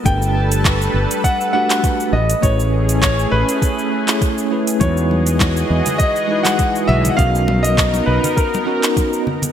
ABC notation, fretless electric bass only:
X:1
M:4/4
L:1/8
Q:"Swing 16ths" 1/4=101
K:Bmix
V:1 name="Fretless electric bass" clef=bass
=G,,,3 G,,, z3 A,,, | A,,,3 A,,, z4 | E,,3 E,, z3 B,,, | B,,,3 B,,, z4 |]